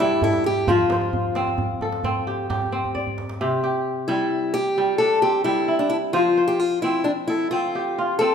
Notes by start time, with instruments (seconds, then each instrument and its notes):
Already playing: kora C3 D4
0.00 kora G3 E4, steel-string acoustic guitar E4
0.22 steel-string acoustic guitar E4, kora A4, djembe slap, djembe tone, djembe bass
0.33 djembe slap
0.46 steel-string acoustic guitar G4
0.56 djembe slap
0.68 kora F3 C5, steel-string acoustic guitar F4, djembe slap, djembe tone, djembe bass
0.90 kora C5, djembe slap
1.01 djembe slap, djembe tone
1.13 djembe bass
1.35 kora C4, djembe slap
1.47 djembe tone
1.58 djembe bass
1.81 kora A4, djembe tone
1.92 djembe slap
2.04 kora C4, djembe slap, djembe bass
2.15 djembe slap
2.27 kora G4
2.50 kora G4, djembe slap, djembe bass
2.62 djembe tone
2.72 kora C4
2.85 djembe bass
2.95 kora D5, djembe bass
3.07 djembe bass
3.18 djembe slap
3.29 djembe slap
3.41 kora C3 G4
3.64 kora G4
4.08 kora G3, steel-string acoustic guitar E4
4.54 steel-string acoustic guitar G4
4.78 kora G3
4.98 kora D4, steel-string acoustic guitar A4
5.22 kora C4, steel-string acoustic guitar G4
5.44 kora G3, steel-string acoustic guitar E4
5.68 kora E4
5.79 steel-string acoustic guitar D4
5.90 steel-string acoustic guitar E4
6.13 kora F3 C5, steel-string acoustic guitar F4
6.37 kora C5
6.48 steel-string acoustic guitar G4
6.59 steel-string acoustic guitar F4
6.82 kora C4, steel-string acoustic guitar E4
7.04 steel-string acoustic guitar D4
7.28 steel-string acoustic guitar E4, kora A4
7.51 kora C4, steel-string acoustic guitar F4
7.75 kora G4
7.98 kora F4
8.19 kora C4, steel-string acoustic guitar A4